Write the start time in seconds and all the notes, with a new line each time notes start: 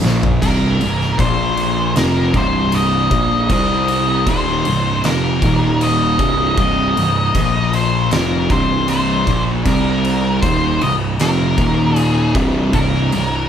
0.03 A#1 A#2 F3 A#3, snare
0.23 floor tom
0.42 C1 C2 G2 C3 A#4, kick, crash
0.80 C1 C2 G2, crash
1.01 snare
1.18 A#1 A#2 F3 A#3 C5, kick, crash
1.57 crash
1.95 F1 F2 C3 F3 A#4, snare, crash
2.34 C1 C2 G2 C3 C5, kick, crash
2.72 D#5, crash
3.11 A#1 A#2 F3 A#3, kick, crash
3.50 C2 C3 G3 C4 D#5, kick, crash
3.88 crash
4.27 D#1 D#2 A#2 D#3 C5, kick, crash
4.65 C1 C2 G2, crash
5.04 F1 F2 C3 F3 A#4, snare, crash
5.42 D#1 D#2 A#2 D#3, kick, crash
5.81 D#5, crash
6.19 C1 C2 G2 C3, kick, crash
6.57 C1 C2 G2 C3 D#5, kick, crash
6.97 C1 C2 G2, crash
7.35 A#1 A#2 F3 A#3, kick, crash
7.73 C5, crash
8.11 F1 F2 C3 F3 A#4, snare, crash
8.50 C1 C2 G2 C3 C5, kick, crash
8.88 C5, crash
9.27 A#1 A#2 F3 A#3, kick, crash
9.65 C2 C3 G3 C4 A#4, kick, crash
10.04 crash
10.42 D#1 D#2 A#2 D#3 C5, kick, crash
10.81 C1 C2 G2 D#5, crash
11.19 F1 F2 C3 F3 A#4, snare, crash
11.58 D#1 D#2 A#2 D#3, kick, crash
11.96 G#4, crash
12.35 C1 C2 G2 C3, kick, crash
12.73 C1 C2 G2 C3 A#4, kick, crash
13.12 C1 C2 G2, crash